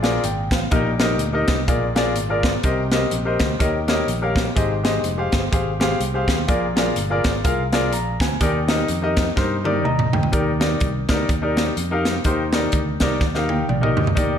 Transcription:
Already playing: A#1 A#2
0.02 F4 G#4 A#4 D5, snare, closed hi-hat
0.24 G#1 G5, closed hi-hat
0.51 A1 F5, kick, snare, closed hi-hat
0.71 A#1 A#2 D#4 G4 A#4 D#5, kick, closed hi-hat
0.99 D#4 G4 A#4 D#5, snare, closed hi-hat
1.19 D2, closed hi-hat
1.33 D#4 G4 A#4 D#5
1.48 C2, kick, snare, closed hi-hat
1.68 A#1 A#2 F4 G#4 A#4 D5, kick, closed hi-hat
1.95 F4 G#4 A#4 D5, snare, closed hi-hat
2.15 G#1, closed hi-hat
2.29 F4 G#4 A#4 D5
2.43 kick, snare, closed hi-hat
2.63 C2 C3 G4 A#4 C5 D#5, kick, closed hi-hat
2.91 G4 A#4 C5 D#5, snare, closed hi-hat
3.11 A#1, closed hi-hat
3.25 G4 A#4 C5 D#5
3.40 D2, kick, snare, closed hi-hat
3.59 D#2 D#3 G4 A#4 C#5 D#5, kick, closed hi-hat
3.88 G4 A#4 C#5 D#5, snare, closed hi-hat
4.08 A#1, closed hi-hat
4.22 G4 A#4 C#5 F5
4.36 kick, snare, closed hi-hat
4.56 G#1 G#2 G4 G#4 C5 D#5, kick, closed hi-hat
4.84 G4 G#4 C5 D#5, snare, closed hi-hat
5.04 F1, closed hi-hat
5.18 G4 G#4 C5 F5
5.32 G1, kick, snare, closed hi-hat
5.52 G#1 G4 G#4 C5 F5, kick, closed hi-hat
5.80 G4 G#4 C5 F5, snare, closed hi-hat
6.00 C2, closed hi-hat
6.14 G4 G#4 C5 F5
6.28 D#2, kick, snare, closed hi-hat
6.47 A#1 A#2 F4 G#4 A#4 D5, kick, closed hi-hat
6.76 F4 G#4 A#4 D5, snare, closed hi-hat
6.96 G1, closed hi-hat
7.10 F4 G#4 A#4 D5
7.24 G#1, kick, snare, closed hi-hat
7.44 C2 F4 G#4 A#4 F5, kick, closed hi-hat
7.72 F4 G#4 A#4 D5, snare, closed hi-hat
7.93 A#1 A#5, closed hi-hat
8.20 D2 G#5, kick, snare, closed hi-hat
8.40 D#2 D#3 D#4 G4 A#4 D5, kick, closed hi-hat
8.68 D#4 G4 A#4 D#5, snare, closed hi-hat
8.88 F2, closed hi-hat
9.02 D#4 G4 A#4 D#5
9.17 kick, snare, closed hi-hat
9.36 G2 D#4 G4 A#4 C5, kick, snare
9.64 D#4 G4 A#4 D5, high tom
9.85 D#2 D#5 A#5, mid tom
9.99 mid tom
10.13 D2 G5, floor tom
10.23 floor tom
10.32 D#2 D#3 D#4 G4 A#4 D5, kick, closed hi-hat
10.60 D#4 G4 A#4 D5, snare, closed hi-hat
10.80 C2, kick, closed hi-hat
11.09 D2 D#4 G4 A#4 D5, kick, snare, closed hi-hat
11.29 D#2, kick, closed hi-hat
11.42 D#4 G4 A#4 D5
11.57 snare, closed hi-hat
11.77 F2, closed hi-hat
11.91 D#4 G4 A#4 F5
12.05 snare, closed hi-hat
12.24 D#2 D#3 D#4 G4 A#4 C5, kick, closed hi-hat
12.53 D#4 G4 A#4 D5, snare, closed hi-hat
12.72 D2, kick, closed hi-hat
13.00 C2 D#4 G4 A#4 D5, kick, snare, closed hi-hat
13.21 D#2, kick, snare
13.35 D#4 G4 A#4 F5, snare
13.49 G5, high tom
13.69 A#1 D5, mid tom
13.81 D#4 G4 A#4 D#5, mid tom
13.97 D2, floor tom
14.07 floor tom
14.15 D#2 D#3 D#4 G4 A#4 D5, kick, closed hi-hat

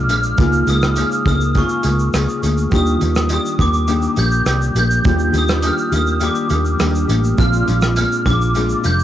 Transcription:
Already playing: G#3 C4 D4 F4
0.09 A#1 F3 G#3 D4 F6, closed hi-hat, shaker
0.23 shaker
0.36 C#2 C#3 G#3 A#3 D#4 F4, kick, closed hi-hat, shaker
0.40 F4 G#4
0.53 shaker
0.67 C#2 A#3 F4 G#4 D#6, closed hi-hat, shaker
0.82 cross-stick, shaker
0.96 C#3 A#3 F4 G#4 F6, closed hi-hat, shaker
1.12 shaker
1.25 C#2 A#3 F4 G#4 D#6, kick, closed hi-hat, shaker
1.41 shaker
1.55 C#3 A#3 F4 G#4 C#6, kick, closed hi-hat, shaker
1.69 shaker
1.83 C#2 F4 G#4, closed hi-hat, shaker
1.87 A#3
1.99 shaker
2.13 C#2 C#3 A#3 F4 G#4, cross-stick, closed hi-hat, shaker
2.29 shaker
2.42 D2 A#3 F4 G#4, closed hi-hat, shaker
2.57 shaker
2.70 D#2 D#3 G3 A#3 D4 G4, kick, closed hi-hat, shaker
2.74 F4 D#6
2.86 shaker
3.00 D#2 A#3 D4 G4, closed hi-hat, shaker
3.15 cross-stick, shaker
3.29 D#3 A#3 D4 G4 D#6, closed hi-hat, shaker
3.45 shaker
3.59 D#2 A#3 D4 G4 D6, kick, closed hi-hat, shaker
3.74 shaker
3.87 D#3 A#3 D4 G4, closed hi-hat, shaker
4.02 shaker
4.16 A#1 A#3 D4 G4 G6, closed hi-hat, shaker
4.31 shaker
4.46 C2 D#3 A#3 D4, cross-stick, closed hi-hat, shaker
4.50 G4
4.62 shaker
4.75 A#1 A#3 D4 G4 G6, closed hi-hat, shaker
4.91 shaker
5.02 D#2 D#3 G3 A#3 D4, kick, closed hi-hat, shaker
5.06 F4 G4
5.19 shaker
5.32 D#2 A#3 D4 G4, closed hi-hat, shaker
5.38 D#6
5.48 cross-stick, shaker
5.62 D#3 A#3 D4 G4, closed hi-hat, shaker
5.67 F6
5.78 shaker
5.91 D#2 A#3 D4 G4, closed hi-hat, shaker
5.96 D#6
6.07 shaker
6.20 D#3 A#3 D4 G4 D6, closed hi-hat, shaker
6.35 shaker
6.50 D#2 A#3 D4 G4, closed hi-hat, shaker
6.65 shaker
6.78 D#2 D#3 G3 A#3 D4 G4, cross-stick, closed hi-hat, shaker
6.82 G4
6.95 shaker
7.07 A1 A#3 D4 G4, closed hi-hat, shaker
7.24 shaker
7.35 A#1 A#2 G#3 C4 D4, kick, closed hi-hat, shaker
7.40 F4 F6
7.53 shaker
7.67 A#1 G#3 D4 F4, closed hi-hat, shaker
7.81 cross-stick, shaker
7.96 A#2 G#3 D4 F4 F6, closed hi-hat, shaker
8.12 shaker
8.25 A#1 G#3 D4 F4 D6, kick, closed hi-hat, shaker
8.41 shaker
8.55 A#2 G#3 D4 F4, closed hi-hat, shaker
8.69 shaker
8.84 F1 G#3 D4 F4 G6, closed hi-hat, shaker
8.99 shaker

